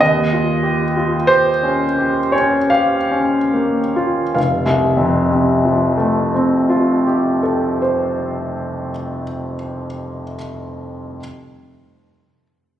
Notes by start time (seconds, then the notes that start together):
0.01 D#2 D#5
0.33 F4
0.63 G4
0.97 F4
1.27 G4 C5
1.63 C#4
1.98 G4
2.32 C#4 C#5
2.70 G4 F5
3.11 C#4
3.54 A#3
3.96 F4
4.35 F1 F5
4.66 C2
4.97 F2
5.31 C3
5.65 F3
5.97 A3
6.34 C4
6.70 F4
7.07 G4
7.43 A4
7.82 C5